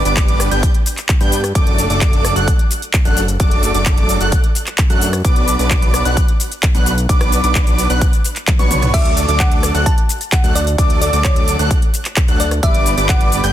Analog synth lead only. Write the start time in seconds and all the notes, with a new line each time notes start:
0.05 D6
0.51 G6
1.21 G6
1.55 D6
1.90 D6
2.36 F#6
3.05 F#6
3.40 D6
3.75 D6
4.21 F#6
4.90 F#6
5.25 D6
5.59 D6
6.05 F#6
6.75 F#6
7.09 D6
7.44 D6
7.90 F#6
8.59 C#6
8.94 D6
9.29 D6
9.75 F#6
10.44 F#6
10.79 D6
11.13 D6
11.59 F#6
12.28 F#6
12.63 D6
12.98 D6
13.44 G6